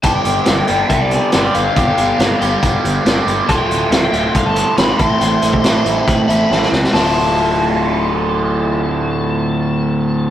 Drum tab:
HH |x-x-x-x-x-x-x-x-|x-x-x-x-x-x-x-x-|x-x-x-x-x-x-x-x-|x-x-x-x-x-x-----|
SD |----o-------o---|----o-------o---|----o-------o---|----o-------oooo|
BD |o-------o-------|o-------o-------|o-------o-----o-|---o----o-------|

HH |o---------------|----------------|
SD |o---------------|----------------|
BD |----------------|----------------|